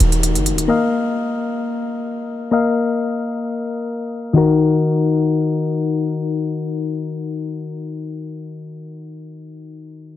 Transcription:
Already playing: D#3 D#4 F#4 A#4, downlifter
0.00 D#1, closed hi-hat
0.12 closed hi-hat
0.23 closed hi-hat
0.35 F#1, closed hi-hat
0.46 closed hi-hat
0.52 D#1
0.58 closed hi-hat
0.68 A#3 A#4 D#5 F5
2.51 A#3 A#4 D#5 F5
4.33 D#3 D#4 F#4
4.38 A#4

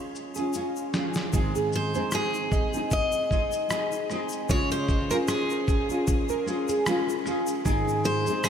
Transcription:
Already playing: G#3 C#4 F4 G#4 C#5
0.15 shaker
0.35 G#4, shaker
0.37 C#4 F4, shaker
0.53 G#3 C#4 F4, shaker
0.57 G#4
0.76 shaker
0.94 G#3 C#4 F4 G#4, snare, shaker
1.14 snare, shaker
1.16 shaker
1.33 G#2 D#3 G#3 C4 D#4 G#4, kick, shaker
1.55 G#4, shaker
1.73 C5, shaker
1.94 G#3 C4 D#4 G#4 C5, shaker
2.11 cross-stick, shaker
2.13 G#4, shaker
2.34 shaker
2.52 D#5, kick, shaker
2.73 G#3 C4 D#4 G#4, shaker
2.91 D#5, kick, shaker
3.12 shaker
3.30 G#3 C4 D#4 G#4, kick, shaker
3.52 shaker
3.53 shaker
3.69 G#3 C4 D#4 G#4, cross-stick, shaker
3.92 shaker
4.10 G#3 C4 D#4 G#4, cross-stick, shaker
4.29 shaker
4.32 shaker
4.49 C#3 G#3 C#4 F4 G#4 C#5, kick, shaker
4.71 C5, shaker
4.89 kick, shaker
5.10 C#4 F4 G#4 A#4 C5, shaker
5.28 G#4, cross-stick, shaker
5.29 shaker
5.50 shaker
5.68 kick, shaker
5.89 C#4 F4 G#4, shaker
6.07 kick, shaker
6.29 A#4, shaker
6.46 G#3 C#4 F4 G#4, shaker
6.68 G#4, shaker
6.86 G#3 C#4 F4 G#4, cross-stick, shaker
7.09 shaker
7.25 G#3 C#4 F4 G#4, cross-stick, shaker
7.47 shaker
7.48 shaker
7.64 G#2 D#3 G#3 C4 D#4 G#4, kick, shaker
7.87 G#4, shaker
8.05 C5, shaker
8.26 G#3 C4 D#4 G#4 C5, shaker
8.44 G#4, cross-stick, shaker

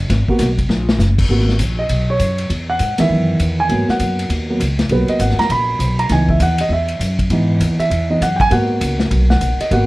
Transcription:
0.10 G#1, kick, snare, ride
0.28 A#3 B3 F#4, muted upright bass stroke, kick
0.39 B1, kick, snare, hi-hat pedal, ride
0.58 kick, ride
0.69 A#1, snare
0.89 snare
0.98 F#1, snare, hi-hat pedal
1.18 kick, crash
1.29 G#1 A#3 B3 F#4, kick
1.39 snare
1.49 snare
1.59 A#1, kick, hi-hat pedal, ride
1.79 D#5
1.89 B1, kick, ride
2.10 C#5
2.19 F#2, kick, hi-hat pedal, ride
2.38 ride
2.50 E2, kick, ride
2.70 F#5
2.79 G#2, kick, hi-hat pedal, ride
2.98 D#3 E3 B3 E5, muted upright bass stroke, snare, ride
3.09 F#2, kick
3.40 E2, kick, hi-hat pedal, ride
3.60 G#5
3.69 G#2 F#3 A#3 B3, kick, ride
3.89 F#5, muted upright bass stroke, snare
4.00 F#2, kick, hi-hat pedal, ride
4.19 ride
4.29 D#2, kick, ride
4.50 F#3 A#3 B3
4.60 C#2, kick, hi-hat pedal, ride
4.79 snare, ride
4.89 B1 F#3 A#3 B3 B4, kick, ride
5.08 D#5, ride
5.19 G#1 F#5, kick, hi-hat pedal, ride
5.30 snare
5.39 A#5, muted upright bass stroke, snare, ride
5.49 A#1 B5, kick, ride
5.79 B1, kick, hi-hat pedal, ride
5.99 A#5, ride
6.09 C#2 E3 B3 D#4 G#5, kick, snare, ride
6.29 E5, kick
6.40 D#2 F#5, kick, hi-hat pedal, ride
6.58 D#5, ride
6.69 E2 E5, kick
6.88 ride
7.00 F#2, kick, hi-hat pedal, ride
7.19 kick, ride
7.30 G#2 E3 B3 D#4, kick, ride
7.60 D#2, kick, hi-hat pedal, ride
7.78 E5, muted upright bass stroke, ride
7.90 E2, kick, ride
8.10 E3 B3 D#4 D#5
8.21 F#2 F#5, kick, hi-hat pedal, ride
8.36 G5, kick
8.40 G#5, ride
8.50 G#2 A#3 B3 F#4 F#5, kick, ride
8.81 C#2, kick, hi-hat pedal, ride
9.00 snare
9.11 B1, kick, ride
9.30 F#5, snare
9.41 A#1, kick, hi-hat pedal, ride
9.59 D#5, muted upright bass stroke, ride
9.71 G#1 A#3 B3 F#4 F#5, kick, ride

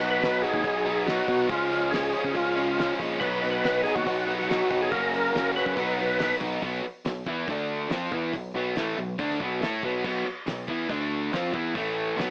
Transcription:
Already playing: B1 B2 F#3 B3 D#4
0.00 F#3 B3 D#4 F#4, open hi-hat
0.10 B4
0.20 B2 F#3 B3 D#4 F#4, snare, open hi-hat
0.42 F#3 B3 D#4 F#4 G#4, open hi-hat
0.54 D#2, kick
0.62 B1 B2 F#3 B3 D#4 F#4, kick, open hi-hat
0.85 B2 F#3 B3 D#4 F#4, open hi-hat
1.05 B2 F#3 B3 D#4 F#4, snare, open hi-hat
1.27 B2 F#3 B3 D#4 F#4, kick, open hi-hat
1.48 C#2 C#3 F3 G#3 C#4 F4 G#4, kick, open hi-hat
1.70 F3 G#3 C#4 F4 G#4, open hi-hat
1.91 C#3 F3 G#3 C#4 F4 G#4, snare, open hi-hat
2.13 F3 G#3 C#4 F4 G#4, open hi-hat
2.24 C#3, kick
2.33 C#2 C#3 F3 G#3 F4 G#4, kick, open hi-hat
2.38 C#4
2.56 C#3 F3 G#3 C#4 F4 G#4, open hi-hat
2.77 C#3 F3 G#3 C#4 G#4, snare, open hi-hat
2.99 A#1 F3 G#3 C#4 F4 G#4, kick, open hi-hat
3.20 B1 B2 F#3 B3 F#4 B4, kick, crash
3.24 D#4
3.42 F#3 B3 D#4 F#4, open hi-hat
3.51 B4
3.63 B2 F#3 B3 D#4 F#4, snare, open hi-hat
3.84 F#3 B3 D#4 F#4 G#4, open hi-hat
3.95 D#2 F#4, kick
4.05 B1 B2 F#3 B3 D#4 F#4, kick, open hi-hat
4.26 B2 F#3 B3 D#4 F#4, open hi-hat
4.39 F#4, snare
4.48 B2 F#3 B3 D#4 F#4, snare, open hi-hat
4.70 G1 F#3 B3 D#4 F#4, kick, open hi-hat
4.82 G#4
4.90 F#1 F#2 C#3 F#3 A#3 C#4 F#4 A#4, kick, open hi-hat
5.11 F#3 A#3 C#4 F#4, open hi-hat
5.33 F#2 C#3 F#3 A#3 C#4 F#4, snare, open hi-hat
5.55 F#3 A#3 C#4 F#4 B4, open hi-hat
5.66 F#2, kick
5.76 B1 B2 F#3 B3 D#4 F#4, kick, open hi-hat
5.98 B2 F#3 B3 D#4 F#4, open hi-hat
6.19 B2 F#3 B3 D#4, snare, open hi-hat
6.40 B1 F#3 B3 D#4 F#4, kick, open hi-hat
6.62 B1 B2 F#3 B3, kick, open hi-hat
6.84 muted distorted electric guitar stroke, muted overdriven electric guitar stroke
7.05 B1 B2 F#3, snare, open hi-hat
7.26 E2 E3 B3 E4, kick
7.48 D2 D3 A3 D4, kick, open hi-hat
7.89 F2 F3 C4 F4, snare, open hi-hat
8.12 E2 E3 B3 E4, kick
8.33 B1 B2 F#3, kick, open hi-hat
8.54 B1 B2 F#3 B3
8.75 A1 A2 E3 A3, snare, open hi-hat
8.97 B1 B2 F#3
9.18 D2 D3 A3 D4, kick, open hi-hat
9.31 snare
9.40 B1 B2 F#3 B3, kick
9.60 A2 A3 E4 A4, snare, open hi-hat
9.83 B1 B2 F#3 B3, kick
10.04 B1 B2 F#3 B3, kick, crash
10.26 muted distorted electric guitar stroke, muted overdriven electric guitar stroke
10.46 B1 B2 F#3, snare, open hi-hat
10.68 E2 E3 B3 E4, kick
10.89 D2 D3 A3 D4, kick, open hi-hat
11.33 F2 F3 C4 F4, snare, open hi-hat
11.53 E2 E3 B3 E4, kick
11.75 A1 A2 E3 A3, kick, open hi-hat
12.17 B1 B2 F#3 B3, snare, open hi-hat

